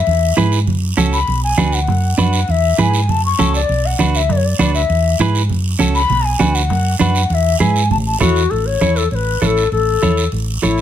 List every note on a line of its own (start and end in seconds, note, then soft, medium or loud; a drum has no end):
0.00 0.33 E5 medium
0.07 0.31 E2 medium
0.07 high conga soft
0.07 long guiro medium
0.37 0.67 G#2 medium
0.37 0.58 E4 medium
0.37 0.58 G#4 medium
0.37 0.59 B4 loud
0.37 high conga medium
0.37 short guiro medium
0.52 short guiro medium
0.67 0.92 F#2 medium
0.67 high conga soft
0.67 low conga medium
0.67 long guiro medium
0.97 1.22 C#2 medium
0.97 1.18 C#4 medium
0.97 1.19 F#4 medium
0.97 1.19 A4 medium
0.97 high conga medium
0.97 short guiro medium
1.13 1.41 B5 medium
1.13 short guiro medium
1.28 1.52 B1 loud
1.28 high conga soft
1.28 long guiro medium
1.44 1.75 G#5 medium
1.58 1.88 D2 medium
1.58 1.79 D4 medium
1.58 1.79 F#4 medium
1.58 1.79 B4 medium
1.58 high conga medium
1.58 short guiro medium
1.72 2.19 F#5 medium
1.72 short guiro medium
1.87 2.12 F#2 medium
1.87 high conga soft
1.87 low conga medium
1.87 long guiro medium
2.18 2.42 F#2 medium
2.18 2.39 D4 medium
2.18 2.39 F#4 medium
2.18 2.39 B4 medium
2.18 2.52 F#5 loud
2.18 high conga medium
2.18 short guiro medium
2.33 short guiro medium
2.48 2.73 E2 medium
2.48 2.80 E5 loud
2.48 high conga soft
2.48 long guiro medium
2.78 3.09 G#2 medium
2.78 3.00 E4 medium
2.78 3.00 G#4 medium
2.78 3.00 B4 medium
2.78 3.12 G#5 medium
2.78 high conga medium
2.78 short guiro medium
2.94 short guiro medium
3.09 3.33 F#2 medium
3.09 3.24 A5 loud
3.09 high conga soft
3.09 low conga medium
3.09 long guiro medium
3.26 3.53 C#6 loud
3.39 3.63 C#2 medium
3.39 3.60 C#4 medium
3.39 3.60 F#4 medium
3.39 3.60 A4 medium
3.39 high conga medium
3.39 low conga medium
3.39 short guiro medium
3.54 3.87 D5 medium
3.54 short guiro medium
3.69 3.93 B1 medium
3.69 high conga soft
3.69 long guiro medium
3.86 4.18 F#5 medium
3.99 4.29 D2 medium
3.99 4.20 D4 medium
3.99 4.21 F#4 medium
3.99 4.21 B4 medium
3.99 high conga medium
3.99 short guiro medium
4.15 4.33 E5 medium
4.15 short guiro medium
4.29 4.53 F#2 loud
4.29 4.38 D5 medium
4.29 high conga soft
4.29 low conga medium
4.29 long guiro medium
4.37 4.47 C#5 medium
4.45 4.60 D5 medium
4.59 4.83 D2 medium
4.59 4.80 D4 medium
4.59 4.81 F#4 medium
4.59 4.81 B4 medium
4.59 4.74 D5 medium
4.59 high conga medium
4.59 short guiro medium
4.75 5.17 E5 medium
4.75 short guiro medium
4.89 5.14 E2 medium
4.89 high conga soft
4.89 long guiro medium
5.19 5.50 G#2 medium
5.19 5.41 E4 medium
5.19 5.41 G#4 medium
5.19 5.42 B4 loud
5.19 high conga medium
5.19 short guiro medium
5.35 short guiro medium
5.50 5.74 F#2 medium
5.50 high conga soft
5.50 low conga medium
5.50 long guiro medium
5.79 6.04 C#2 medium
5.79 6.01 C#4 medium
5.79 6.01 F#4 medium
5.79 6.01 A4 medium
5.79 high conga medium
5.79 short guiro medium
5.95 6.27 B5 loud
5.95 short guiro medium
6.10 6.34 B1 medium
6.10 high conga soft
6.10 low conga medium
6.10 long guiro medium
6.25 6.56 G#5 loud
6.39 6.70 D2 medium
6.39 6.61 D4 medium
6.39 6.61 F#4 medium
6.39 6.61 B4 medium
6.39 high conga medium
6.39 short guiro medium
6.55 6.99 F#5 loud
6.55 short guiro medium
6.70 6.94 F#2 loud
6.70 high conga soft
6.70 low conga medium
6.70 long guiro medium
6.99 7.24 F#2 medium
6.99 7.21 D4 medium
6.99 7.21 F#4 medium
6.99 7.22 B4 medium
6.99 7.31 F#5 loud
6.99 high conga medium
6.99 low conga medium
6.99 short guiro medium
7.15 short guiro medium
7.30 7.54 E2 medium
7.30 7.35 F#5 medium
7.30 high conga soft
7.30 long guiro medium
7.34 7.60 E5 medium
7.60 7.92 G#2 medium
7.60 7.81 E4 medium
7.60 7.82 G#4 medium
7.60 7.82 B4 medium
7.60 7.88 G#5 medium
7.60 high conga medium
7.60 short guiro medium
7.76 short guiro medium
7.91 8.15 A1 loud
7.91 7.97 A5 medium
7.91 high conga soft
7.91 low conga medium
7.91 long guiro medium
8.06 8.20 A5 medium
8.20 8.45 E2 medium
8.20 8.42 E4 medium
8.20 8.52 F#4 medium
8.20 8.42 A4 medium
8.20 8.42 C#5 medium
8.20 high conga medium
8.20 low conga medium
8.20 short guiro medium
8.36 short guiro medium
8.50 8.76 A1 medium
8.50 8.68 A4 medium
8.50 high conga soft
8.50 long guiro medium
8.66 8.98 C#5 medium
8.81 9.06 E2 medium
8.81 9.02 E4 medium
8.81 9.02 A4 medium
8.81 9.03 C#5 medium
8.81 high conga medium
8.81 short guiro medium
8.96 9.11 A4 medium
8.96 short guiro medium
9.11 9.36 A1 medium
9.11 9.41 B4 medium
9.11 9.16 C#5 medium
9.11 high conga soft
9.11 long guiro medium
9.41 9.66 A1 medium
9.41 9.63 E4 medium
9.41 9.63 A4 medium
9.41 9.47 B4 medium
9.41 9.63 C#5 medium
9.41 high conga medium
9.41 short guiro medium
9.46 9.71 A4 medium
9.57 short guiro medium
9.72 9.96 A1 medium
9.72 10.28 A4 medium
9.72 high conga soft
9.72 long guiro medium
10.02 10.26 E2 medium
10.02 10.23 E4 medium
10.02 10.23 A4 medium
10.02 10.24 C#5 medium
10.02 high conga medium
10.02 short guiro medium
10.17 short guiro medium
10.32 10.56 A1 medium
10.32 high conga soft
10.32 long guiro medium
10.63 10.81 A1 medium
10.63 10.81 E4 medium
10.63 10.81 A4 medium
10.63 10.81 C#5 medium
10.63 high conga medium
10.63 short guiro medium
10.78 short guiro medium